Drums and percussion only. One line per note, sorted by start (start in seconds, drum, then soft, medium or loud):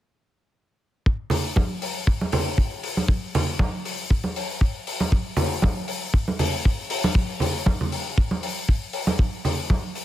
1.06 kick loud
1.30 open hi-hat medium
1.30 low conga medium
1.56 kick medium
1.56 high conga medium
1.82 open hi-hat medium
2.07 kick loud
2.21 high conga medium
2.32 open hi-hat loud
2.32 low conga medium
2.58 kick medium
2.83 open hi-hat medium
2.97 high conga medium
3.08 kick loud
3.35 open hi-hat medium
3.35 low conga medium
3.59 kick loud
3.59 high conga medium
3.85 open hi-hat loud
4.10 kick loud
4.24 high conga medium
4.36 open hi-hat medium
4.61 kick medium
4.87 open hi-hat loud
5.00 high conga medium
5.12 kick loud
5.37 open hi-hat loud
5.37 low conga medium
5.62 kick medium
5.62 high conga medium
5.88 open hi-hat medium
6.14 kick loud
6.28 high conga medium
6.39 open hi-hat loud
6.39 low conga medium
6.65 kick medium
6.90 open hi-hat loud
7.04 high conga medium
7.15 kick loud
7.40 open hi-hat loud
7.40 low conga medium
7.66 kick loud
7.66 high conga medium
7.81 low conga medium
7.92 open hi-hat loud
8.18 kick loud
8.31 high conga medium
8.43 open hi-hat medium
8.69 kick medium
8.93 open hi-hat medium
9.07 high conga medium
9.19 kick loud
9.45 open hi-hat medium
9.45 low conga medium
9.70 kick medium
9.70 high conga medium
9.95 open hi-hat medium